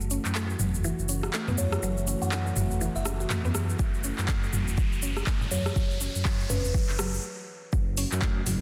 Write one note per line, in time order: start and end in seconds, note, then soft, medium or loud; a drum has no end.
0.00 0.18 F#1 loud
0.00 7.20 E3 medium
0.00 7.20 A3 medium
0.00 7.20 F#4 medium
0.00 riser medium
0.00 shaker soft
0.11 0.24 C#4 medium
0.11 shaker medium
0.25 0.55 F#2 medium
0.25 clap soft
0.25 shaker soft
0.35 0.48 A3 medium
0.35 clap loud
0.35 shaker medium
0.50 shaker soft
0.59 0.92 F#1 medium
0.59 0.68 F#3 medium
0.59 mid tom medium
0.59 shaker medium
0.74 shaker soft
0.84 0.92 E3 loud
0.84 shaker soft
0.99 1.29 F#1 medium
0.99 shaker soft
1.09 1.22 C#4 medium
1.09 shaker medium
1.23 1.33 F#4 medium
1.23 cross-stick medium
1.23 shaker soft
1.33 1.47 A3 loud
1.33 clap loud
1.33 shaker medium
1.48 1.78 F#2 medium
1.48 1.54 B3 loud
1.48 mid tom medium
1.48 shaker soft
1.58 1.78 C#5 medium
1.58 shaker medium
1.72 cross-stick medium
1.72 shaker soft
1.83 2.15 F#1 loud
1.83 1.91 F#3 loud
1.83 shaker medium
1.97 shaker soft
2.07 2.21 C#4 medium
2.07 shaker medium
2.22 2.52 F#2 medium
2.22 2.28 F#5 medium
2.22 shaker soft
2.32 2.45 A3 loud
2.32 2.41 F#5 medium
2.32 clap loud
2.32 shaker medium
2.46 shaker soft
2.56 2.89 F#1 medium
2.56 2.64 F#3 medium
2.56 mid tom medium
2.56 shaker medium
2.71 shaker soft
2.81 2.89 E3 loud
2.81 shaker soft
2.96 3.26 F#1 medium
2.96 3.64 E5 medium
2.96 shaker soft
3.06 3.19 C#4 medium
3.06 cross-stick loud
3.06 shaker loud
3.20 3.29 F#4 medium
3.20 shaker soft
3.30 3.44 A3 loud
3.30 clap medium
3.30 mid tom medium
3.30 shaker medium
3.45 3.75 F#2 medium
3.45 3.50 B3 loud
3.45 shaker soft
3.55 cross-stick medium
3.55 shaker medium
3.69 shaker soft
3.79 4.12 F#1 loud
3.79 3.87 F#3 medium
3.79 kick loud
3.79 shaker medium
3.94 shaker soft
4.04 4.17 C#4 medium
4.04 shaker medium
4.18 4.48 F#2 medium
4.18 clap soft
4.18 shaker soft
4.28 4.42 A3 medium
4.28 kick loud
4.28 clap loud
4.28 shaker medium
4.43 shaker soft
4.53 4.85 F#1 medium
4.53 4.61 F#3 medium
4.53 mid tom medium
4.53 shaker medium
4.68 shaker soft
4.78 4.86 F#3 loud
4.78 kick loud
4.78 shaker medium
4.92 5.22 F#1 medium
4.92 shaker soft
5.02 5.16 C#4 medium
5.02 shaker loud
5.17 cross-stick medium
5.17 shaker soft
5.27 5.40 A3 medium
5.27 kick loud
5.27 clap loud
5.27 shaker medium
5.41 5.71 F#2 medium
5.41 mid tom medium
5.41 shaker soft
5.51 5.60 F#3 medium
5.51 5.71 C#5 medium
5.51 shaker loud
5.66 cross-stick medium
5.66 shaker soft
5.76 6.08 F#1 loud
5.76 5.84 F#3 loud
5.76 kick loud
5.76 shaker medium
5.91 shaker soft
6.01 6.14 C#4 medium
6.01 shaker medium
6.15 6.45 F#2 loud
6.15 shaker soft
6.25 6.33 F#3 loud
6.25 kick loud
6.25 clap loud
6.25 shaker medium
6.40 shaker soft
6.50 6.82 F#1 medium
6.50 6.63 C#4 medium
6.50 6.89 B4 medium
6.50 mid tom medium
6.50 shaker loud
6.65 shaker soft
6.74 6.82 F#3 loud
6.74 kick loud
6.74 shaker medium
6.89 7.19 F#1 loud
6.89 clap soft
6.89 shaker soft
6.99 7.07 F#3 loud
6.99 cross-stick loud
6.99 shaker loud
7.14 shaker soft
7.73 8.05 F#1 loud
7.73 8.61 E3 medium
7.73 7.81 F#3 loud
7.73 8.61 A3 medium
7.73 8.61 F#4 medium
7.73 kick loud
7.73 shaker soft
7.97 8.11 C#4 medium
7.97 open hi-hat medium
7.97 shaker medium
8.12 8.42 F#2 loud
8.12 clap soft
8.12 shaker medium
8.22 8.35 A3 loud
8.22 kick loud
8.22 clap loud
8.22 shaker soft
8.46 8.61 F#1 medium
8.46 8.55 F#3 medium
8.46 mid tom medium
8.46 open hi-hat medium
8.46 shaker medium